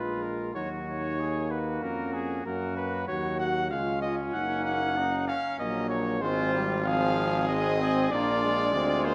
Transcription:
Already playing: bass trombone A#1, trombone G#3, trumpet F4, french horn F4, cornet B4
0.23 cornet A#4
0.54 bass trombone D#2, trombone F#3, french horn D#4, trumpet F#4, cornet C#5
0.87 cornet C#5
1.18 trombone A#3, trumpet G#4
1.51 trumpet F#4, cornet B4
1.82 bass trombone F2, french horn C#4, cornet A#4
2.14 cornet G#4
2.45 bass trombone F#2, trombone A#3, french horn C#4, trumpet F#4, cornet A#4
2.77 cornet B4
3.07 bass trombone D#2, trombone F#3, trumpet F#4, french horn F#4, cornet C#5
3.40 cornet F#5
3.70 bass trombone C#2, trombone G#3, trumpet C#4, french horn F4, cornet F5
4.02 cornet D#5
4.33 bass trombone F#1, trombone A#3, french horn D#4, cornet F#5
4.65 cornet F#5
4.97 french horn C#4, trumpet D#4
5.28 trumpet C#4, cornet F5
5.59 bass trombone A#1, trombone F#3, french horn A#3, cornet D#5
5.90 cornet C#5
6.20 bass trombone G#1, trombone G#3, french horn C4, trumpet F4, cornet C5
6.53 trombone G3
6.85 trombone F3, trumpet G#4, cornet F5
7.48 trombone G#3, french horn C4, cornet D#5
7.81 trombone C4
8.11 bass trombone A#1, trombone A#3, french horn D4, trumpet F4, cornet D5
8.43 trombone G#3
8.74 bass trombone D2, french horn C4, trumpet F4
9.05 french horn A#3, cornet C5

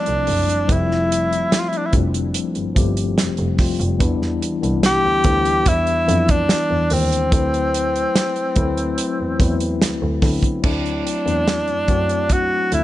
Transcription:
Already playing: tine electric piano F3 G3 A3 C4 D4 E4, tenor saxophone D4
0.06 double bass C2, closed hi-hat
0.27 double bass F#1, open hi-hat
0.49 closed hi-hat
0.67 double bass F1, tine electric piano F3 G3 A3 C4 E4, kick, closed hi-hat
0.72 tenor saxophone E4
0.91 snare
1.12 closed hi-hat
1.33 closed hi-hat
1.52 snare, closed hi-hat
1.59 tenor saxophone F4
1.68 tenor saxophone E4
1.73 closed hi-hat
1.77 tenor saxophone D4
1.86 tenor saxophone E4
1.91 double bass F1, tine electric piano F3 G3 A3 C4 D4, kick, closed hi-hat
2.14 closed hi-hat
2.34 closed hi-hat
2.55 double bass G1, closed hi-hat
2.75 double bass G1, tine electric piano F3 G3 A3 C4 G4, kick, closed hi-hat
2.97 closed hi-hat
3.18 double bass F1, snare, closed hi-hat
3.37 double bass F1, closed hi-hat
3.57 tine electric piano F3 G3 A3 C4 F4, kick, snare, open hi-hat
3.80 double bass F1, closed hi-hat
3.99 double bass E2, tine electric piano E3 G3 B3 D4 E4, kick, closed hi-hat
4.22 snare
4.42 closed hi-hat
4.61 double bass C2, tine electric piano E3 G3 B3 D4 E4, closed hi-hat
4.83 tenor saxophone G4, snare, closed hi-hat
5.04 double bass D2
5.24 double bass D2, tine electric piano E3 G3 B3 D4 E4, kick, closed hi-hat
5.45 closed hi-hat
5.66 double bass E2, tenor saxophone E4, kick, closed hi-hat
5.87 closed hi-hat
6.06 double bass F2, tine electric piano E3 G3 B3 D4 E4, closed hi-hat
6.29 tenor saxophone D4, kick, closed hi-hat
6.49 snare, closed hi-hat
6.70 double bass E2
6.90 double bass D#2, tenor saxophone C4, open hi-hat
7.12 closed hi-hat
7.30 double bass D2, tine electric piano F#3 A3 C4 E4 B4, kick, closed hi-hat
7.54 closed hi-hat
7.74 closed hi-hat
7.96 closed hi-hat
8.15 snare, closed hi-hat
8.36 closed hi-hat
8.55 double bass D2, tine electric piano F#3 A3 C4 E4 B4, kick, closed hi-hat
8.77 closed hi-hat
8.98 closed hi-hat
9.20 double bass E2
9.38 double bass E2, tine electric piano F#3 A3 C4 E4 B4, kick, closed hi-hat
9.60 closed hi-hat
9.81 double bass D2, snare, closed hi-hat
10.02 double bass D2
10.21 double bass D3, tine electric piano F#3 A3 B3 C4 E4, kick, snare, open hi-hat
10.43 kick, closed hi-hat
10.62 double bass D2, tine electric piano F#3 A3 C4 D4 E4, tenor saxophone D4, kick, crash
10.86 closed hi-hat
11.07 closed hi-hat
11.25 double bass E2, tine electric piano F#3 A3 C4 D4 E4, closed hi-hat
11.47 snare, closed hi-hat
11.68 double bass F#2, closed hi-hat
11.88 double bass F#2, tine electric piano F#3 A3 C4 D4 F#4, kick, closed hi-hat
12.09 closed hi-hat
12.29 tenor saxophone F#4, kick, closed hi-hat
12.70 double bass D2, tine electric piano F#3 A3 C4 D4 E4, tenor saxophone E4, closed hi-hat

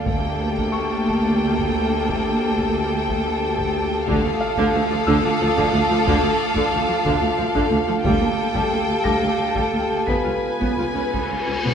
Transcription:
0.06 double bass section D2, cello section D2, viola section A#3, glass harmonica G4 A4 A5, violin section A4 G5, taiko
0.57 taiko
0.72 grand piano C#6
1.08 taiko
1.59 taiko
2.09 taiko
2.58 taiko
3.09 taiko
3.58 taiko
4.07 cello section D2, double bass section D2, viola section D3, glass harmonica F4 A4 F5, violin section A4 F5 D6 D#6, taiko
4.24 cello section D2, viola section A3
4.41 grand piano F5
4.57 cello section D2, viola section D3, taiko
4.74 cello section D2, double bass section D2, viola section A3
4.90 cello section D2, viola section F3
5.07 double bass section D2, cello section D2, viola section D3, grand piano E6, taiko
5.24 cello section D2, viola section A3
5.40 double bass section D2, cello section D2, viola section F3
5.56 cello section D2, viola section D3, taiko
5.73 cello section D2, double bass section D2, viola section A3
5.89 cello section D2, viola section F3
6.06 double bass section D2, cello section D2, viola section D3, taiko
6.23 cello section D2, viola section A3
6.55 cello section D2, viola section D3, taiko
6.72 cello section D2, double bass section D2, viola section A3
6.88 cello section D2, viola section F3
7.05 cello section D2, double bass section D2, viola section D3, taiko
7.21 cello section D2, viola section A3
7.37 cello section D2, double bass section D2, viola section F3
7.54 cello section D2, viola section D3, taiko
7.71 cello section D2, double bass section D2, viola section A3
7.87 cello section D2, viola section F3
8.04 cello section D2, double bass section D2, viola section G3, glass harmonica G4 A4, violin section A4 G5, taiko
8.21 cello section D2, viola section A#3
8.54 cello section D2, viola section G3, taiko
8.71 cello section D2, double bass section D2, viola section A#3
8.87 cello section D2, viola section A3
9.04 cello section D2, double bass section D2, viola section G3, grand piano D6 A#6, taiko
9.21 cello section D2, viola section A#3
9.37 cello section D2, double bass section D2, viola section A3
9.54 cello section D2, viola section G3, taiko
9.72 cello section D2, double bass section D2, viola section A#3
9.88 cello section D2, viola section A3
10.07 cello section C#2, double bass section C#2, viola section B3, violin section B4 G#5, grand piano B6, taiko, cymbal swell
10.11 glass harmonica F4 B4 G#5
10.23 cello section C#2, viola section F4
10.59 cello section C#2, viola section B3, taiko
10.77 cello section C#2, double bass section C#2, viola section F4
10.94 cello section C#2, viola section C#4
11.12 cello section C#2, double bass section C#2, viola section B3, taiko
11.28 cello section C#2, viola section F4
11.46 cello section C#2, double bass section C#2, viola section C#4
11.63 cello section C#2, viola section B3, taiko mid

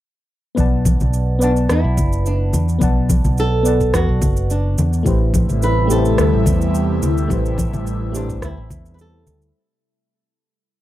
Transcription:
0.55 fretless electric bass B1, fm electric piano B3 B4 D5 F#5, kick, high conga, shaker
0.60 fm electric piano A5
0.85 kick, high conga, shaker
1.00 fretless electric bass B1, low conga, shaker
1.13 shaker
1.39 fm electric piano B3 B4 D5 F#5, shaker
1.43 nylon-string guitar D4, fm electric piano A5
1.57 shaker
1.69 fretless electric bass E2, nylon-string guitar E4, cross-stick, shaker
1.84 fretless electric bass B1
1.97 fretless electric bass F#1, kick, low conga, shaker
2.13 shaker
2.26 nylon-string guitar D4, shaker
2.53 fretless electric bass E2, low conga, shaker
2.69 shaker
2.79 fretless electric bass B1, fm electric piano B3 B4 D5, kick, high conga, shaker
2.83 fm electric piano F#5 A5
3.10 kick, high conga, shaker
3.24 fretless electric bass B1, low conga, shaker
3.38 nylon-string guitar A4, shaker
3.63 fm electric piano B3 B4 D5, shaker
3.67 fm electric piano F#5 A5
3.81 kick, shaker
3.94 fretless electric bass E2, nylon-string guitar F#4, kick, cross-stick, shaker
4.09 fretless electric bass B1
4.22 fretless electric bass F#1, kick, low conga, shaker
4.37 shaker
4.50 nylon-string guitar D4, shaker
4.78 fretless electric bass E2, low conga, shaker
4.93 shaker
5.03 fretless electric bass A1, analog synth pad C3 G3 A3 E4, fm electric piano A3 E4 G4, kick, high conga, shaker
5.07 fm electric piano B4 C5
5.34 kick, high conga, shaker
5.49 fretless electric bass A1, low conga, shaker
5.62 nylon-string guitar B4, shaker
5.87 fm electric piano A3 E4 G4 B4, shaker
5.91 nylon-string guitar A4, fm electric piano C5
6.05 shaker
6.18 fretless electric bass D2, cross-stick, shaker
6.33 fretless electric bass A1
6.46 fretless electric bass E2, kick, low conga, shaker
6.62 shaker
6.75 shaker
7.02 fretless electric bass D2, low conga, shaker
7.18 shaker
7.28 fretless electric bass A1, fm electric piano A3 E4 G4 B4, kick, high conga, shaker
7.33 fm electric piano C5
7.46 shaker
7.58 kick, high conga, shaker
7.73 fretless electric bass A1, low conga, shaker
7.87 shaker
8.12 fm electric piano A3 E4 G4, nylon-string guitar D4, shaker
8.16 fm electric piano B4 C5
8.29 kick, shaker
8.42 fretless electric bass D2, nylon-string guitar E4, kick, cross-stick, shaker
8.57 fretless electric bass A1
8.71 fretless electric bass E2, kick, low conga, shaker
8.86 shaker
8.94 nylon-string guitar B4
8.99 nylon-string guitar A4, shaker
9.27 fretless electric bass D2, low conga, shaker
9.42 shaker

